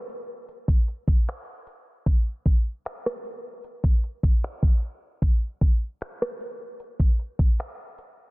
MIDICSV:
0, 0, Header, 1, 2, 480
1, 0, Start_track
1, 0, Tempo, 789474
1, 1255, Time_signature, 4, 2, 24, 8
1, 5051, End_track
2, 0, Start_track
2, 0, Title_t, "Drums"
2, 56, Note_on_c, 9, 46, 59
2, 117, Note_off_c, 9, 46, 0
2, 295, Note_on_c, 9, 42, 74
2, 356, Note_off_c, 9, 42, 0
2, 414, Note_on_c, 9, 36, 89
2, 475, Note_off_c, 9, 36, 0
2, 535, Note_on_c, 9, 42, 67
2, 596, Note_off_c, 9, 42, 0
2, 654, Note_on_c, 9, 36, 97
2, 715, Note_off_c, 9, 36, 0
2, 776, Note_on_c, 9, 42, 67
2, 783, Note_on_c, 9, 26, 110
2, 837, Note_off_c, 9, 42, 0
2, 844, Note_off_c, 9, 26, 0
2, 1015, Note_on_c, 9, 42, 70
2, 1076, Note_off_c, 9, 42, 0
2, 1254, Note_on_c, 9, 36, 112
2, 1255, Note_on_c, 9, 42, 70
2, 1315, Note_off_c, 9, 36, 0
2, 1316, Note_off_c, 9, 42, 0
2, 1494, Note_on_c, 9, 36, 88
2, 1496, Note_on_c, 9, 42, 75
2, 1554, Note_off_c, 9, 36, 0
2, 1556, Note_off_c, 9, 42, 0
2, 1735, Note_on_c, 9, 42, 63
2, 1740, Note_on_c, 9, 26, 107
2, 1795, Note_off_c, 9, 42, 0
2, 1801, Note_off_c, 9, 26, 0
2, 1862, Note_on_c, 9, 37, 92
2, 1923, Note_off_c, 9, 37, 0
2, 1974, Note_on_c, 9, 46, 59
2, 2035, Note_off_c, 9, 46, 0
2, 2214, Note_on_c, 9, 42, 73
2, 2275, Note_off_c, 9, 42, 0
2, 2333, Note_on_c, 9, 36, 94
2, 2394, Note_off_c, 9, 36, 0
2, 2454, Note_on_c, 9, 42, 65
2, 2515, Note_off_c, 9, 42, 0
2, 2574, Note_on_c, 9, 36, 101
2, 2635, Note_off_c, 9, 36, 0
2, 2695, Note_on_c, 9, 42, 67
2, 2702, Note_on_c, 9, 26, 118
2, 2756, Note_off_c, 9, 42, 0
2, 2762, Note_off_c, 9, 26, 0
2, 2813, Note_on_c, 9, 36, 87
2, 2874, Note_off_c, 9, 36, 0
2, 2935, Note_on_c, 9, 42, 70
2, 2995, Note_off_c, 9, 42, 0
2, 3174, Note_on_c, 9, 36, 122
2, 3174, Note_on_c, 9, 42, 72
2, 3234, Note_off_c, 9, 36, 0
2, 3235, Note_off_c, 9, 42, 0
2, 3413, Note_on_c, 9, 36, 88
2, 3414, Note_on_c, 9, 42, 76
2, 3474, Note_off_c, 9, 36, 0
2, 3475, Note_off_c, 9, 42, 0
2, 3654, Note_on_c, 9, 42, 61
2, 3659, Note_on_c, 9, 26, 115
2, 3715, Note_off_c, 9, 42, 0
2, 3720, Note_off_c, 9, 26, 0
2, 3782, Note_on_c, 9, 37, 94
2, 3842, Note_off_c, 9, 37, 0
2, 3893, Note_on_c, 9, 46, 63
2, 3954, Note_off_c, 9, 46, 0
2, 4134, Note_on_c, 9, 42, 80
2, 4194, Note_off_c, 9, 42, 0
2, 4253, Note_on_c, 9, 36, 89
2, 4314, Note_off_c, 9, 36, 0
2, 4374, Note_on_c, 9, 42, 63
2, 4434, Note_off_c, 9, 42, 0
2, 4494, Note_on_c, 9, 36, 96
2, 4555, Note_off_c, 9, 36, 0
2, 4614, Note_on_c, 9, 42, 70
2, 4620, Note_on_c, 9, 26, 115
2, 4675, Note_off_c, 9, 42, 0
2, 4681, Note_off_c, 9, 26, 0
2, 4854, Note_on_c, 9, 42, 68
2, 4915, Note_off_c, 9, 42, 0
2, 5051, End_track
0, 0, End_of_file